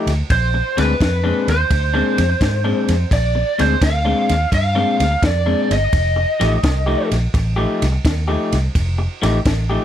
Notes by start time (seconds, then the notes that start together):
Already playing: F3 A3 D#4 G4
0.07 D2, snare, ride
0.30 A#1 C5, kick, snare, ride
0.54 muted clean electric guitar stroke
0.77 D2 A#2 G#3 C4 D4 B4, snare, ride
1.01 F2, muted clean electric guitar stroke, kick, snare, ride
1.24 A#2 G#3 C4 D4
1.48 D#2 C5, snare, ride
1.71 D2, muted clean electric guitar stroke, kick, snare, ride
1.94 A#2 G#3 C4 D4
2.18 F2, snare, ride
2.29 muted clean electric guitar stroke
2.41 G#2, kick, snare, ride
2.64 A#2 G#3 C4 D4
2.88 F2, snare, ride
3.11 A#1 D5, kick, snare, ride
3.35 muted clean electric guitar stroke
3.59 D2 A#2 G#3 C4 D4 C5, snare, ride
3.81 D2 F5, muted clean electric guitar stroke, kick, snare, ride
4.05 A#2 G#3 C4 D4
4.29 D#2, snare, ride
4.52 G2 F5, muted clean electric guitar stroke, kick, snare, ride
4.75 A#2 G#3 C4 D4
5.00 D2, snare, ride
5.11 muted clean electric guitar stroke
5.23 F2 D5, kick, snare, ride
5.46 A#2 G#3 C4 D4
5.70 G1 D#5, snare, ride
5.93 F1, kick, snare, ride
6.16 muted clean electric guitar stroke
6.40 A1 F3 A3 D#4 G4, snare, ride
6.63 C2, muted clean electric guitar stroke, kick, snare, ride
6.86 F3 A3 D#4 G4
7.12 A#1, snare, ride
7.34 A1, muted clean electric guitar stroke, kick, snare, ride
7.56 F3 A3 D#4 G4
7.82 C2, snare, ride
7.92 muted clean electric guitar stroke
8.05 D#2, kick, snare, ride
8.28 F3 A3 D#4 G4
8.53 C2, snare, ride
8.75 F1, kick, snare, ride
8.98 muted clean electric guitar stroke
9.22 A1 F3 A3 D#4 G4, snare, ride
9.45 A1, muted clean electric guitar stroke, kick, snare, ride
9.70 F3 A3 D#4 G4